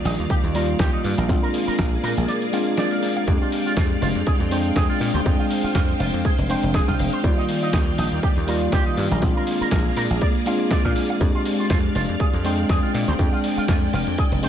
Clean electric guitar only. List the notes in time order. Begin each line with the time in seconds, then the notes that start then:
0.05 D#4
0.30 G4
0.55 A#4
0.80 G4
0.93 D#4
1.18 A#4
1.43 A#4
1.67 A#4
1.79 A#4
2.04 A#4
2.28 D5
2.53 F5
2.78 D5
2.92 A#4
3.16 F5
3.41 F4
3.66 F4
3.77 F4
4.02 F4
4.27 G#4
4.51 C5
4.76 G#4
4.90 F4
5.14 C5
5.39 F4
5.64 F4
5.75 F4
6.00 F4
6.25 G#4
6.50 C5
6.74 G#4
6.88 F4
7.13 C5
7.38 D#4
7.63 D#4
7.74 D#4
7.98 D#4
8.23 G4
8.48 A#4
8.73 G4
8.86 D#4
9.12 A#4
9.37 A#4
9.61 A#4
9.72 A#4
9.97 A#4
10.22 D5
10.47 F5
10.72 D5
10.85 A#4
11.10 F5
11.35 F4
11.59 F4
11.71 F4
11.95 F4
12.20 G#4
12.45 C5
12.70 G#4
12.83 F4
13.08 C5
13.33 F4
13.57 F4
13.69 F4
13.94 F4
14.19 G#4
14.43 C5